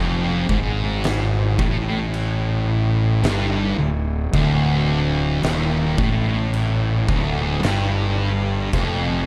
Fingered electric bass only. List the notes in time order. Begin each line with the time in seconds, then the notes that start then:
Already playing: F1
0.50 G#1
1.59 A1
3.24 G1
3.78 D1
4.34 D1
5.43 D#1
5.98 A1
7.09 D1
7.63 G1
8.73 F1